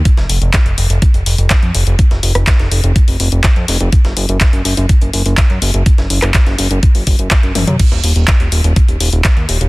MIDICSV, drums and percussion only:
0, 0, Header, 1, 2, 480
1, 0, Start_track
1, 0, Tempo, 483871
1, 54, Time_signature, 4, 2, 24, 8
1, 9609, End_track
2, 0, Start_track
2, 0, Title_t, "Drums"
2, 52, Note_on_c, 9, 42, 53
2, 53, Note_off_c, 9, 42, 0
2, 53, Note_on_c, 9, 36, 118
2, 53, Note_on_c, 9, 42, 92
2, 152, Note_off_c, 9, 42, 0
2, 153, Note_off_c, 9, 36, 0
2, 173, Note_on_c, 9, 38, 61
2, 174, Note_on_c, 9, 42, 27
2, 272, Note_off_c, 9, 38, 0
2, 273, Note_off_c, 9, 42, 0
2, 292, Note_on_c, 9, 42, 70
2, 293, Note_on_c, 9, 46, 108
2, 391, Note_off_c, 9, 42, 0
2, 392, Note_off_c, 9, 46, 0
2, 413, Note_on_c, 9, 42, 50
2, 512, Note_off_c, 9, 42, 0
2, 531, Note_on_c, 9, 39, 117
2, 532, Note_on_c, 9, 38, 121
2, 532, Note_on_c, 9, 42, 90
2, 533, Note_off_c, 9, 42, 0
2, 533, Note_on_c, 9, 36, 125
2, 533, Note_on_c, 9, 42, 51
2, 630, Note_off_c, 9, 39, 0
2, 631, Note_off_c, 9, 38, 0
2, 632, Note_off_c, 9, 42, 0
2, 633, Note_off_c, 9, 36, 0
2, 653, Note_on_c, 9, 42, 42
2, 753, Note_off_c, 9, 42, 0
2, 772, Note_on_c, 9, 42, 68
2, 772, Note_on_c, 9, 46, 105
2, 871, Note_off_c, 9, 46, 0
2, 872, Note_off_c, 9, 42, 0
2, 893, Note_on_c, 9, 42, 54
2, 992, Note_off_c, 9, 42, 0
2, 1012, Note_on_c, 9, 42, 51
2, 1014, Note_on_c, 9, 36, 127
2, 1112, Note_off_c, 9, 42, 0
2, 1113, Note_off_c, 9, 36, 0
2, 1133, Note_on_c, 9, 42, 26
2, 1232, Note_off_c, 9, 42, 0
2, 1252, Note_on_c, 9, 46, 82
2, 1253, Note_off_c, 9, 46, 0
2, 1253, Note_on_c, 9, 46, 101
2, 1352, Note_off_c, 9, 46, 0
2, 1373, Note_on_c, 9, 42, 46
2, 1472, Note_off_c, 9, 42, 0
2, 1490, Note_on_c, 9, 39, 115
2, 1492, Note_on_c, 9, 38, 121
2, 1492, Note_on_c, 9, 42, 89
2, 1493, Note_off_c, 9, 42, 0
2, 1493, Note_on_c, 9, 42, 49
2, 1494, Note_on_c, 9, 36, 120
2, 1589, Note_off_c, 9, 39, 0
2, 1591, Note_off_c, 9, 38, 0
2, 1592, Note_off_c, 9, 42, 0
2, 1593, Note_off_c, 9, 36, 0
2, 1613, Note_on_c, 9, 42, 26
2, 1712, Note_off_c, 9, 42, 0
2, 1732, Note_on_c, 9, 42, 71
2, 1732, Note_on_c, 9, 46, 110
2, 1831, Note_off_c, 9, 46, 0
2, 1832, Note_off_c, 9, 42, 0
2, 1853, Note_on_c, 9, 42, 48
2, 1952, Note_off_c, 9, 42, 0
2, 1972, Note_on_c, 9, 42, 89
2, 1973, Note_on_c, 9, 36, 113
2, 2072, Note_off_c, 9, 42, 0
2, 2073, Note_off_c, 9, 36, 0
2, 2093, Note_on_c, 9, 38, 54
2, 2093, Note_on_c, 9, 42, 27
2, 2193, Note_off_c, 9, 38, 0
2, 2193, Note_off_c, 9, 42, 0
2, 2213, Note_on_c, 9, 42, 69
2, 2213, Note_on_c, 9, 46, 106
2, 2312, Note_off_c, 9, 42, 0
2, 2312, Note_off_c, 9, 46, 0
2, 2333, Note_on_c, 9, 37, 86
2, 2333, Note_on_c, 9, 42, 51
2, 2334, Note_off_c, 9, 42, 0
2, 2334, Note_on_c, 9, 42, 45
2, 2432, Note_off_c, 9, 37, 0
2, 2433, Note_off_c, 9, 42, 0
2, 2451, Note_on_c, 9, 39, 114
2, 2453, Note_on_c, 9, 38, 120
2, 2453, Note_on_c, 9, 42, 88
2, 2454, Note_on_c, 9, 36, 125
2, 2550, Note_off_c, 9, 39, 0
2, 2553, Note_off_c, 9, 36, 0
2, 2553, Note_off_c, 9, 38, 0
2, 2553, Note_off_c, 9, 42, 0
2, 2574, Note_on_c, 9, 42, 27
2, 2575, Note_on_c, 9, 38, 39
2, 2674, Note_off_c, 9, 38, 0
2, 2674, Note_off_c, 9, 42, 0
2, 2693, Note_on_c, 9, 42, 68
2, 2694, Note_on_c, 9, 46, 98
2, 2792, Note_off_c, 9, 42, 0
2, 2793, Note_off_c, 9, 46, 0
2, 2814, Note_on_c, 9, 42, 53
2, 2913, Note_off_c, 9, 42, 0
2, 2933, Note_on_c, 9, 42, 86
2, 2934, Note_off_c, 9, 42, 0
2, 2934, Note_on_c, 9, 36, 115
2, 2934, Note_on_c, 9, 42, 53
2, 3033, Note_off_c, 9, 36, 0
2, 3033, Note_off_c, 9, 42, 0
2, 3053, Note_on_c, 9, 46, 57
2, 3152, Note_off_c, 9, 46, 0
2, 3173, Note_on_c, 9, 42, 70
2, 3173, Note_on_c, 9, 46, 103
2, 3272, Note_off_c, 9, 42, 0
2, 3273, Note_off_c, 9, 46, 0
2, 3294, Note_on_c, 9, 42, 53
2, 3393, Note_off_c, 9, 42, 0
2, 3410, Note_on_c, 9, 39, 106
2, 3413, Note_on_c, 9, 38, 117
2, 3413, Note_on_c, 9, 42, 89
2, 3414, Note_on_c, 9, 36, 116
2, 3509, Note_off_c, 9, 39, 0
2, 3512, Note_off_c, 9, 38, 0
2, 3512, Note_off_c, 9, 42, 0
2, 3513, Note_off_c, 9, 36, 0
2, 3533, Note_on_c, 9, 42, 25
2, 3633, Note_off_c, 9, 42, 0
2, 3653, Note_on_c, 9, 46, 108
2, 3654, Note_on_c, 9, 38, 51
2, 3654, Note_on_c, 9, 42, 68
2, 3752, Note_off_c, 9, 46, 0
2, 3753, Note_off_c, 9, 38, 0
2, 3753, Note_off_c, 9, 42, 0
2, 3774, Note_on_c, 9, 42, 50
2, 3874, Note_off_c, 9, 42, 0
2, 3893, Note_on_c, 9, 42, 55
2, 3894, Note_off_c, 9, 42, 0
2, 3894, Note_on_c, 9, 36, 114
2, 3894, Note_on_c, 9, 42, 91
2, 3993, Note_off_c, 9, 42, 0
2, 3994, Note_off_c, 9, 36, 0
2, 4014, Note_on_c, 9, 38, 60
2, 4014, Note_on_c, 9, 42, 27
2, 4113, Note_off_c, 9, 42, 0
2, 4114, Note_off_c, 9, 38, 0
2, 4133, Note_on_c, 9, 46, 106
2, 4134, Note_on_c, 9, 42, 71
2, 4232, Note_off_c, 9, 46, 0
2, 4233, Note_off_c, 9, 42, 0
2, 4254, Note_on_c, 9, 42, 58
2, 4354, Note_off_c, 9, 42, 0
2, 4371, Note_on_c, 9, 39, 114
2, 4374, Note_on_c, 9, 38, 112
2, 4374, Note_on_c, 9, 42, 88
2, 4375, Note_on_c, 9, 36, 120
2, 4471, Note_off_c, 9, 39, 0
2, 4473, Note_off_c, 9, 38, 0
2, 4473, Note_off_c, 9, 42, 0
2, 4474, Note_off_c, 9, 36, 0
2, 4494, Note_on_c, 9, 42, 44
2, 4495, Note_off_c, 9, 42, 0
2, 4495, Note_on_c, 9, 42, 29
2, 4594, Note_off_c, 9, 42, 0
2, 4614, Note_on_c, 9, 42, 70
2, 4614, Note_on_c, 9, 46, 99
2, 4713, Note_off_c, 9, 42, 0
2, 4713, Note_off_c, 9, 46, 0
2, 4735, Note_on_c, 9, 42, 44
2, 4835, Note_off_c, 9, 42, 0
2, 4854, Note_on_c, 9, 42, 59
2, 4855, Note_off_c, 9, 42, 0
2, 4855, Note_on_c, 9, 36, 109
2, 4855, Note_on_c, 9, 42, 87
2, 4954, Note_off_c, 9, 36, 0
2, 4954, Note_off_c, 9, 42, 0
2, 4975, Note_on_c, 9, 42, 27
2, 4976, Note_off_c, 9, 42, 0
2, 4976, Note_on_c, 9, 42, 48
2, 5075, Note_off_c, 9, 42, 0
2, 5094, Note_on_c, 9, 46, 97
2, 5095, Note_off_c, 9, 46, 0
2, 5095, Note_on_c, 9, 46, 85
2, 5194, Note_off_c, 9, 46, 0
2, 5214, Note_on_c, 9, 42, 54
2, 5216, Note_off_c, 9, 42, 0
2, 5216, Note_on_c, 9, 42, 43
2, 5315, Note_off_c, 9, 42, 0
2, 5331, Note_on_c, 9, 39, 115
2, 5334, Note_on_c, 9, 38, 120
2, 5334, Note_on_c, 9, 42, 91
2, 5335, Note_on_c, 9, 36, 113
2, 5430, Note_off_c, 9, 39, 0
2, 5434, Note_off_c, 9, 36, 0
2, 5434, Note_off_c, 9, 38, 0
2, 5434, Note_off_c, 9, 42, 0
2, 5455, Note_on_c, 9, 42, 27
2, 5554, Note_off_c, 9, 42, 0
2, 5574, Note_on_c, 9, 46, 99
2, 5575, Note_on_c, 9, 42, 69
2, 5673, Note_off_c, 9, 46, 0
2, 5674, Note_off_c, 9, 42, 0
2, 5694, Note_on_c, 9, 42, 52
2, 5794, Note_off_c, 9, 42, 0
2, 5814, Note_on_c, 9, 42, 90
2, 5815, Note_on_c, 9, 36, 114
2, 5914, Note_off_c, 9, 36, 0
2, 5914, Note_off_c, 9, 42, 0
2, 5935, Note_on_c, 9, 38, 53
2, 5935, Note_on_c, 9, 42, 29
2, 6034, Note_off_c, 9, 38, 0
2, 6034, Note_off_c, 9, 42, 0
2, 6053, Note_on_c, 9, 46, 100
2, 6054, Note_on_c, 9, 42, 71
2, 6152, Note_off_c, 9, 46, 0
2, 6153, Note_off_c, 9, 42, 0
2, 6171, Note_on_c, 9, 39, 37
2, 6174, Note_on_c, 9, 37, 83
2, 6174, Note_on_c, 9, 42, 56
2, 6175, Note_off_c, 9, 42, 0
2, 6175, Note_on_c, 9, 42, 44
2, 6271, Note_off_c, 9, 39, 0
2, 6273, Note_off_c, 9, 37, 0
2, 6274, Note_off_c, 9, 42, 0
2, 6291, Note_on_c, 9, 39, 123
2, 6293, Note_on_c, 9, 42, 52
2, 6294, Note_off_c, 9, 42, 0
2, 6294, Note_on_c, 9, 38, 116
2, 6294, Note_on_c, 9, 42, 91
2, 6295, Note_on_c, 9, 36, 125
2, 6390, Note_off_c, 9, 39, 0
2, 6393, Note_off_c, 9, 38, 0
2, 6393, Note_off_c, 9, 42, 0
2, 6394, Note_off_c, 9, 36, 0
2, 6414, Note_on_c, 9, 42, 29
2, 6415, Note_on_c, 9, 38, 37
2, 6513, Note_off_c, 9, 42, 0
2, 6514, Note_off_c, 9, 38, 0
2, 6532, Note_on_c, 9, 46, 106
2, 6534, Note_on_c, 9, 42, 71
2, 6632, Note_off_c, 9, 46, 0
2, 6633, Note_off_c, 9, 42, 0
2, 6653, Note_on_c, 9, 42, 55
2, 6752, Note_off_c, 9, 42, 0
2, 6773, Note_on_c, 9, 42, 57
2, 6774, Note_off_c, 9, 42, 0
2, 6774, Note_on_c, 9, 36, 117
2, 6774, Note_on_c, 9, 42, 91
2, 6873, Note_off_c, 9, 42, 0
2, 6874, Note_off_c, 9, 36, 0
2, 6893, Note_on_c, 9, 46, 61
2, 6992, Note_off_c, 9, 46, 0
2, 7012, Note_on_c, 9, 46, 99
2, 7014, Note_on_c, 9, 36, 57
2, 7014, Note_on_c, 9, 42, 70
2, 7111, Note_off_c, 9, 46, 0
2, 7113, Note_off_c, 9, 42, 0
2, 7114, Note_off_c, 9, 36, 0
2, 7133, Note_on_c, 9, 42, 56
2, 7232, Note_off_c, 9, 42, 0
2, 7250, Note_on_c, 9, 39, 125
2, 7253, Note_on_c, 9, 38, 117
2, 7253, Note_on_c, 9, 42, 93
2, 7254, Note_on_c, 9, 36, 113
2, 7349, Note_off_c, 9, 39, 0
2, 7352, Note_off_c, 9, 38, 0
2, 7352, Note_off_c, 9, 42, 0
2, 7353, Note_off_c, 9, 36, 0
2, 7373, Note_on_c, 9, 42, 28
2, 7473, Note_off_c, 9, 42, 0
2, 7492, Note_on_c, 9, 46, 106
2, 7492, Note_on_c, 9, 48, 63
2, 7493, Note_on_c, 9, 38, 51
2, 7493, Note_on_c, 9, 42, 67
2, 7591, Note_off_c, 9, 46, 0
2, 7591, Note_off_c, 9, 48, 0
2, 7592, Note_off_c, 9, 38, 0
2, 7592, Note_off_c, 9, 42, 0
2, 7613, Note_on_c, 9, 42, 58
2, 7613, Note_on_c, 9, 47, 72
2, 7712, Note_off_c, 9, 42, 0
2, 7712, Note_off_c, 9, 47, 0
2, 7732, Note_on_c, 9, 42, 89
2, 7732, Note_on_c, 9, 49, 78
2, 7734, Note_on_c, 9, 36, 117
2, 7832, Note_off_c, 9, 42, 0
2, 7832, Note_off_c, 9, 49, 0
2, 7833, Note_off_c, 9, 36, 0
2, 7853, Note_on_c, 9, 38, 59
2, 7853, Note_on_c, 9, 42, 28
2, 7952, Note_off_c, 9, 38, 0
2, 7952, Note_off_c, 9, 42, 0
2, 7972, Note_on_c, 9, 46, 108
2, 7973, Note_on_c, 9, 42, 70
2, 8071, Note_off_c, 9, 46, 0
2, 8073, Note_off_c, 9, 42, 0
2, 8093, Note_on_c, 9, 42, 54
2, 8192, Note_off_c, 9, 42, 0
2, 8210, Note_on_c, 9, 39, 127
2, 8213, Note_on_c, 9, 38, 114
2, 8213, Note_on_c, 9, 42, 93
2, 8214, Note_on_c, 9, 36, 127
2, 8309, Note_off_c, 9, 39, 0
2, 8313, Note_off_c, 9, 36, 0
2, 8313, Note_off_c, 9, 38, 0
2, 8313, Note_off_c, 9, 42, 0
2, 8332, Note_on_c, 9, 42, 29
2, 8334, Note_off_c, 9, 42, 0
2, 8334, Note_on_c, 9, 42, 41
2, 8433, Note_off_c, 9, 42, 0
2, 8452, Note_on_c, 9, 46, 105
2, 8454, Note_on_c, 9, 42, 72
2, 8551, Note_off_c, 9, 46, 0
2, 8553, Note_off_c, 9, 42, 0
2, 8573, Note_on_c, 9, 42, 57
2, 8574, Note_off_c, 9, 42, 0
2, 8574, Note_on_c, 9, 42, 45
2, 8673, Note_off_c, 9, 42, 0
2, 8693, Note_on_c, 9, 42, 87
2, 8694, Note_on_c, 9, 36, 123
2, 8792, Note_off_c, 9, 42, 0
2, 8793, Note_off_c, 9, 36, 0
2, 8813, Note_on_c, 9, 42, 27
2, 8814, Note_off_c, 9, 42, 0
2, 8814, Note_on_c, 9, 42, 46
2, 8913, Note_off_c, 9, 42, 0
2, 8932, Note_on_c, 9, 46, 101
2, 8933, Note_off_c, 9, 46, 0
2, 8933, Note_on_c, 9, 46, 78
2, 9032, Note_off_c, 9, 46, 0
2, 9053, Note_on_c, 9, 42, 55
2, 9054, Note_off_c, 9, 42, 0
2, 9054, Note_on_c, 9, 42, 44
2, 9153, Note_off_c, 9, 42, 0
2, 9170, Note_on_c, 9, 39, 125
2, 9173, Note_on_c, 9, 38, 122
2, 9173, Note_on_c, 9, 42, 56
2, 9174, Note_on_c, 9, 36, 125
2, 9269, Note_off_c, 9, 39, 0
2, 9272, Note_off_c, 9, 38, 0
2, 9272, Note_off_c, 9, 42, 0
2, 9273, Note_off_c, 9, 36, 0
2, 9293, Note_on_c, 9, 42, 27
2, 9392, Note_off_c, 9, 42, 0
2, 9412, Note_on_c, 9, 42, 71
2, 9412, Note_on_c, 9, 46, 114
2, 9511, Note_off_c, 9, 46, 0
2, 9512, Note_off_c, 9, 42, 0
2, 9533, Note_on_c, 9, 42, 54
2, 9609, Note_off_c, 9, 42, 0
2, 9609, End_track
0, 0, End_of_file